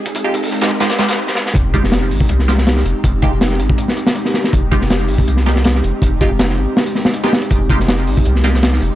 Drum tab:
HH |xx-xo-x-xxxx----|x-x-xxo-x-x-x-x-|x-x-x-x-x-x-x-x-|x-x-xxo-x-x-x-x-|
SD |------o-oooo-ooo|---oo----ooooo--|----oo---o-o-ooo|---oo----ooooo--|
BD |oo-o-o-o--------|o-o----o--------|o-o----o--------|o-o----o--------|

HH |x-x-x----x--x--x|x-x-xxo-x-x-x-x-|
SD |----oo--o-oo-oo-|---oo----ooooo--|
BD |o-o-------------|o-o----o--------|